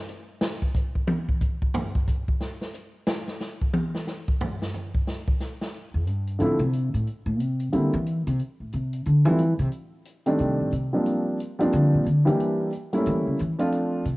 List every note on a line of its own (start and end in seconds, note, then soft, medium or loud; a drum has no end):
0.08 hi-hat pedal medium
0.41 snare loud
0.62 kick medium
0.75 kick medium
0.75 hi-hat pedal medium
0.95 kick medium
1.07 high tom loud
1.29 kick medium
1.40 kick medium
1.40 hi-hat pedal medium
1.62 kick medium
1.74 floor tom loud
1.95 kick medium
2.08 kick medium
2.08 hi-hat pedal medium
2.28 kick medium
2.41 snare soft
2.61 snare soft
2.73 hi-hat pedal medium
3.07 snare loud
3.28 snare soft
3.40 snare soft
3.40 hi-hat pedal medium
3.61 kick medium
3.73 high tom loud
3.95 snare medium
4.07 snare soft
4.07 hi-hat pedal medium
4.28 kick medium
4.41 floor tom loud
4.62 snare medium
4.74 floor tom soft
4.74 hi-hat pedal medium
4.95 kick medium
5.07 snare medium
5.28 kick medium
5.40 snare soft
5.40 hi-hat pedal medium
5.61 snare medium
5.74 closed hi-hat soft
5.94 6.08 E2 medium
6.07 6.40 G2 medium
6.07 closed hi-hat soft
6.27 closed hi-hat soft
6.39 6.59 A2 medium
6.39 6.58 D3 medium
6.39 6.59 F3 soft
6.39 6.59 A3 medium
6.39 6.59 C4 medium
6.39 6.59 E4 medium
6.39 closed hi-hat soft
6.59 6.91 C3 loud
6.73 closed hi-hat soft
6.94 7.06 A2 medium
6.94 closed hi-hat soft
7.07 closed hi-hat soft
7.26 7.40 A2 medium
7.40 7.73 C3 medium
7.40 closed hi-hat soft
7.60 closed hi-hat soft
7.72 7.92 D3 medium
7.72 7.93 D3 medium
7.72 7.92 G3 medium
7.72 7.92 A#3 soft
7.72 7.92 C4 soft
7.72 7.92 E4 medium
7.72 closed hi-hat soft
7.93 8.25 E3 loud
8.06 closed hi-hat soft
8.27 8.39 C3 loud
8.27 closed hi-hat soft
8.39 closed hi-hat soft
8.60 8.73 A2 soft
8.72 9.04 C3 medium
8.72 closed hi-hat soft
8.93 closed hi-hat soft
9.05 9.25 D3 medium
9.05 closed hi-hat soft
9.25 9.58 E3 loud
9.25 9.38 F3 medium
9.25 9.38 G3 medium
9.25 9.39 A3 soft
9.25 9.39 C4 medium
9.25 9.39 E4 medium
9.38 closed hi-hat medium
9.59 9.67 C3 medium
9.59 closed hi-hat soft
9.72 closed hi-hat soft
10.05 closed hi-hat medium
10.26 10.70 D#3 medium
10.26 10.70 G3 medium
10.26 10.70 A3 medium
10.26 10.70 C4 medium
10.26 10.71 D4 medium
10.26 closed hi-hat soft
10.39 10.59 C3 medium
10.39 closed hi-hat soft
10.60 10.72 A2 medium
10.72 10.93 C3 medium
10.72 closed hi-hat medium
10.93 11.37 F3 medium
10.93 11.37 G3 soft
10.93 11.37 A#3 soft
10.93 11.37 C4 soft
10.93 11.37 D4 medium
11.06 closed hi-hat soft
11.40 closed hi-hat soft
11.59 12.03 F3 medium
11.59 12.03 G3 medium
11.59 12.03 A#3 medium
11.59 12.03 C4 medium
11.59 12.04 D4 medium
11.59 closed hi-hat soft
11.72 11.93 D3 loud
11.72 closed hi-hat soft
11.94 12.06 A#2 medium
12.06 12.26 D3 medium
12.06 closed hi-hat soft
12.25 12.69 E3 medium
12.25 12.70 G3 medium
12.25 12.70 A#3 medium
12.25 12.70 D4 medium
12.25 12.70 G4 medium
12.25 closed hi-hat soft
12.40 closed hi-hat soft
12.73 closed hi-hat soft
12.93 13.36 G3 medium
12.93 13.37 A3 medium
12.93 13.37 A#3 medium
12.93 13.37 C#4 medium
12.93 13.37 E4 medium
12.93 closed hi-hat soft
13.06 13.26 E3 loud
13.06 closed hi-hat soft
13.27 13.39 C#3 medium
13.39 13.52 E3 medium
13.39 closed hi-hat medium
13.58 14.03 F3 medium
13.58 14.03 A3 medium
13.58 14.03 C4 medium
13.58 14.03 D4 medium
13.58 14.03 F4 medium
13.58 closed hi-hat soft
13.72 closed hi-hat soft
14.05 14.17 C3 medium
14.05 closed hi-hat medium